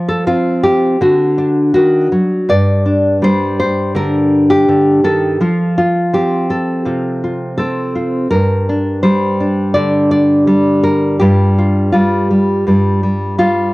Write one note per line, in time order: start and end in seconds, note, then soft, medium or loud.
0.00 0.96 F3 medium
0.00 0.63 C5 loud
0.08 0.26 A4 medium
0.27 0.96 C4 medium
0.27 1.00 F4 medium
0.63 1.00 G4 medium
1.01 1.74 D3 medium
1.01 1.73 F#4 medium
1.38 2.44 D4 soft
1.74 2.11 D#3 medium
1.74 2.48 F#4 medium
2.12 2.48 F#3 medium
2.49 5.41 G2 medium
2.49 3.22 D5 medium
2.86 5.04 D4 soft
3.22 5.41 G3 medium
3.22 3.58 C5 loud
3.59 3.96 C5 medium
3.95 4.67 D3 medium
3.95 4.49 A#4 medium
4.50 5.41 G4 medium
4.68 5.04 D3 medium
5.04 5.40 D#3 medium
5.04 5.77 A4 medium
5.41 8.27 F3 medium
5.41 5.77 F4 medium
5.78 6.50 F4 medium
6.13 7.58 C4 medium
6.13 7.22 G4 medium
6.50 7.57 A4 medium
6.85 8.26 C3 medium
6.85 7.22 F4 soft
7.24 7.94 F4 soft
7.58 8.27 C4 medium
7.58 8.31 A4 medium
7.96 8.27 F4 soft
8.31 11.21 G2 medium
8.31 9.02 A#4 medium
8.69 9.39 D4 soft
9.03 10.47 G3 medium
9.03 9.74 C5 medium
9.40 11.20 D4 soft
9.74 11.19 D3 medium
9.74 10.10 D5 medium
10.11 10.83 D5 medium
10.47 11.21 G3 medium
10.83 11.19 A#4 medium
11.19 12.66 G2 medium
11.19 11.93 G3 soft
11.19 11.57 F4 soft
11.19 12.65 G4 medium
11.58 11.91 F4 soft
11.92 12.30 G3 medium
11.92 13.37 F4 medium
12.30 12.67 G3 soft
12.67 13.74 G2 medium
12.67 13.02 G3 soft
13.03 13.37 G3 soft
13.38 13.74 G3 medium
13.38 13.74 F4 medium